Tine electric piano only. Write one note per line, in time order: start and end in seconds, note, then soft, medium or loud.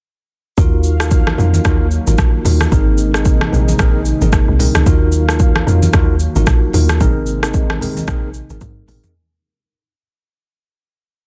0.57 0.96 D#4 medium
0.57 0.96 F4 medium
0.57 0.96 F#4 medium
0.57 0.97 A#4 loud
1.00 1.35 D#4 medium
1.00 1.35 F4 medium
1.00 1.35 F#4 medium
1.00 1.35 A#4 medium
1.38 1.63 D#4 medium
1.38 1.63 F4 medium
1.38 1.63 F#4 medium
1.38 1.63 A#4 medium
1.65 1.86 D#4 medium
1.65 1.86 F4 medium
1.65 1.86 F#4 medium
1.65 1.86 A#4 loud
2.07 2.42 D#4 medium
2.07 2.42 F4 medium
2.07 2.43 F#4 medium
2.07 2.43 A#4 medium
2.45 2.70 D#4 medium
2.45 2.70 F4 medium
2.45 2.70 F#4 medium
2.45 2.70 A#4 medium
2.71 3.10 C4 medium
2.71 3.10 D#4 medium
2.71 3.11 G#4 medium
2.71 3.11 A#4 loud
3.14 3.49 C4 medium
3.14 3.50 D#4 medium
3.14 3.50 G#4 medium
3.14 3.50 A#4 medium
3.52 3.77 C4 medium
3.52 3.77 D#4 medium
3.52 3.77 G#4 medium
3.52 3.77 A#4 medium
3.79 4.00 C4 medium
3.79 4.00 D#4 medium
3.79 4.00 G#4 medium
3.79 4.00 A#4 loud
4.21 4.57 C4 medium
4.21 4.57 D#4 medium
4.21 4.57 G#4 medium
4.21 4.57 A#4 medium
4.59 4.84 C4 medium
4.59 4.85 D#4 medium
4.59 4.85 G#4 medium
4.59 4.85 A#4 medium
4.86 5.25 D#4 medium
4.86 5.25 F4 medium
4.86 5.25 F#4 medium
4.86 5.25 A#4 loud
5.28 5.64 D#4 medium
5.28 5.64 F4 medium
5.28 5.64 F#4 medium
5.28 5.64 A#4 medium
5.66 5.92 D#4 medium
5.66 5.92 F4 medium
5.66 5.92 F#4 medium
5.66 5.92 A#4 medium
5.93 6.14 D#4 medium
5.93 6.14 F4 medium
5.93 6.14 F#4 medium
5.93 6.15 A#4 loud
6.36 6.71 D#4 medium
6.36 6.71 F4 medium
6.36 6.71 F#4 medium
6.36 6.71 A#4 medium
6.74 6.99 D#4 medium
6.74 6.99 F4 medium
6.74 6.99 F#4 medium
6.74 6.99 A#4 medium
7.00 7.39 C4 medium
7.00 7.39 D#4 medium
7.00 7.39 G#4 medium
7.00 7.39 A#4 loud
7.43 7.78 C4 medium
7.43 7.78 D#4 medium
7.43 7.78 G#4 medium
7.43 7.78 A#4 medium
7.81 8.06 C4 medium
7.81 8.06 D#4 medium
7.81 8.06 G#4 medium
7.81 8.06 A#4 medium
8.08 8.29 C4 medium
8.08 8.29 D#4 medium
8.08 8.29 G#4 medium
8.08 8.29 A#4 loud
8.50 8.85 C4 medium
8.50 8.85 D#4 medium
8.50 8.86 G#4 medium
8.50 8.86 A#4 medium
8.88 9.13 C4 medium
8.88 9.13 D#4 medium
8.88 9.13 G#4 medium
8.88 9.13 A#4 medium